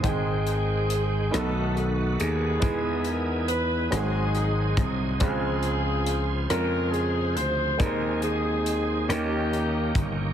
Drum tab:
HH |xxxxxx|xxxxxx|xxxxxx|xxxxxx|
SD |---r--|---rr-|---r--|---r--|
BD |o-----|o----o|o-----|o----o|